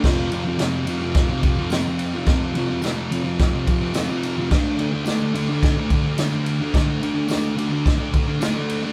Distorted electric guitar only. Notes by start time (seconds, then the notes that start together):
0.03 F2 C3 F3
0.31 F2 C3 F3
0.45 C3 F3
0.58 F2 C3 F3
0.85 F2 C3 F3
1.01 C3 F3
1.29 C3 F3
1.42 F2 C3 F3
1.58 C3 F3
1.71 F2 C3 F3
1.86 C3 F3
2.14 C3 F3
2.27 F2 C3 F3
2.54 F2 C3 F3
2.69 C3 F3
2.82 F2 C3 F3
3.11 F2 C3 F3
3.24 C3 F3
3.52 C3 F3
3.66 F2 C3 F3
3.80 C3 F3
3.94 F2 C3 F3
4.09 C3 F3
4.37 C3 F3
4.50 D3 A3 D4
4.77 D3 A3 D4
4.92 A3 D4
5.05 D3 A3 D4
5.33 D3 A3 D4
5.48 A3 D4
5.77 A3 D4
5.91 D3 A3 D4
6.06 A3 D4
6.18 D3 A3 D4
6.32 A3 D4
6.60 A3 D4
6.74 D3 A3 D4
7.01 D3 A3 D4
7.14 A3 D4
7.28 D3 A3 D4
7.56 D3 A3 D4
7.69 A3 D4
7.98 A3 D4
8.13 D3 A3 D4
8.27 A3 D4
8.40 D3 A3 D4
8.55 A3 D4
8.83 A3 D4